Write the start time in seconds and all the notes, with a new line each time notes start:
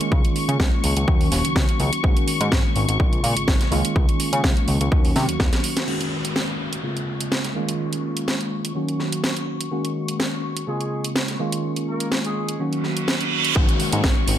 Already playing: D#3 G#3 A#3 C#4 F4 C#6
0.01 closed hi-hat
0.12 C#2, kick
0.25 closed hi-hat
0.36 open hi-hat
0.49 C#3, closed hi-hat
0.60 C#2, kick, snare
0.84 C#2, open hi-hat
0.97 C#2, closed hi-hat
1.07 D#2 D#3 F#3 A#3 C#4 F#4, kick
1.21 open hi-hat
1.32 D#1, snare, open hi-hat
1.45 C#2, closed hi-hat
1.56 C#2, kick, snare
1.69 closed hi-hat
1.80 C#2, open hi-hat
1.93 closed hi-hat
2.03 G#1 D#3 G#3 A#3 C#4 F#4, kick
2.17 closed hi-hat
2.28 open hi-hat
2.41 G#2, closed hi-hat
2.52 G#1, kick, snare
2.76 G#1, open hi-hat
2.89 G#1, closed hi-hat
2.99 A#1 C#3 G#3 A#3 C4 F4, kick
3.13 closed hi-hat
3.24 A#2, open hi-hat
3.37 G#1, closed hi-hat
3.48 G#1, kick, snare
3.61 snare, closed hi-hat
3.71 C#2 D#3 G#3 A#3 C#4 F4, open hi-hat
3.85 closed hi-hat
3.96 C#2, kick
4.09 closed hi-hat
4.20 open hi-hat
4.33 C#3, closed hi-hat
4.44 C#2, kick, snare
4.57 closed hi-hat
4.68 C#2, open hi-hat
4.81 C#2, closed hi-hat
4.91 D#2 D#3 F#3 A#3 C#4 F#4, kick
5.05 open hi-hat
5.16 C3, snare, open hi-hat
5.29 D#2, closed hi-hat
5.40 D#2, kick, snare
5.53 snare, closed hi-hat
5.64 open hi-hat
5.77 snare, closed hi-hat
5.87 D#3 G#3 A#3 C#4 F#4 C#6, crash, downlifter
6.01 closed hi-hat
6.25 closed hi-hat
6.36 snare
6.73 closed hi-hat
6.83 C#3 G#3 A#3 C4 F4
6.97 closed hi-hat
7.21 closed hi-hat
7.32 snare
7.45 snare, closed hi-hat
7.55 D#3 G#3 A#3 C#4 F4
7.69 closed hi-hat
7.93 closed hi-hat
8.17 closed hi-hat
8.28 snare
8.41 closed hi-hat
8.65 closed hi-hat
8.75 D#3 F#3 A#3 C#4 F#4
8.88 closed hi-hat
9.00 snare
9.12 closed hi-hat
9.24 snare
9.37 closed hi-hat
9.61 closed hi-hat
9.71 D#3 G#3 A#3 C#4 F#4
9.85 closed hi-hat
10.08 closed hi-hat
10.20 snare
10.57 closed hi-hat
10.67 C#3 G#3 A#3 C4 F4 G#4
10.81 closed hi-hat
11.04 closed hi-hat
11.16 snare
11.28 snare, closed hi-hat
11.39 D#3 G#3 A#3 C#4 F4
11.52 closed hi-hat
11.76 closed hi-hat
11.88 A#3 A#4
12.00 closed hi-hat
12.12 snare
12.24 G#3 G#4, closed hi-hat
12.49 closed hi-hat
12.59 D#3 F#3 A#3 C#4 F#4, reverse cymbal
12.73 closed hi-hat
12.84 snare
12.97 closed hi-hat
13.08 snare
13.21 closed hi-hat
13.45 closed hi-hat
13.55 G#1 D#3 G#3 A#3 C#4 F#4 C#6, kick, downlifter
13.69 closed hi-hat
13.80 open hi-hat
13.93 G#2, closed hi-hat
14.04 G#1, kick, snare
14.28 G#1, open hi-hat